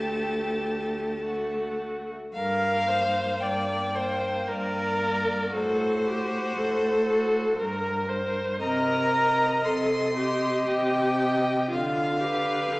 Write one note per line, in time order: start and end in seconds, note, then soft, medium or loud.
0.00 2.14 D2 medium
0.00 1.20 A3 medium
0.00 1.21 G4 medium
0.00 1.81 A5 medium
1.25 2.12 A3 medium
1.25 2.13 F#4 soft
2.33 3.28 G2 medium
2.33 2.89 A#4 medium
2.33 3.42 F5 loud
2.87 3.92 A#3 medium
2.87 3.44 C5 medium
3.41 4.35 G2 medium
3.41 3.97 D5 medium
3.41 4.49 G5 medium
3.94 4.99 A#3 medium
3.94 4.49 C5 medium
4.48 5.41 G2 medium
4.48 5.52 A#4 medium
4.48 5.56 D5 medium
5.00 5.49 A#3 medium
5.50 6.45 A2 medium
5.50 6.03 F#4 medium
5.50 6.08 A4 medium
5.54 8.10 C5 loud
6.05 7.06 F#4 medium
6.05 6.59 G4 medium
6.56 7.46 A2 medium
6.56 7.61 A4 medium
7.08 7.57 F#4 medium
7.57 8.49 G2 medium
7.57 8.09 A#4 medium
7.57 8.10 A#4 medium
8.09 8.60 A#4 medium
8.09 8.61 C5 medium
8.60 9.52 C3 medium
8.60 9.67 A#4 medium
8.60 9.11 D#5 medium
8.60 9.66 A#5 loud
9.13 10.15 D#5 medium
9.65 10.57 C3 medium
9.65 10.16 A4 medium
9.65 10.70 C6 loud
10.17 11.67 G4 medium
10.17 11.18 D#5 medium
10.68 11.58 C3 medium
10.68 11.70 G5 loud
11.19 11.69 D#5 medium
11.70 12.58 D3 medium
11.70 12.21 F4 medium
11.70 12.80 F5 loud
12.19 12.73 G4 medium
12.19 12.80 B4 medium
12.71 12.80 D3 medium
12.71 12.80 A4 medium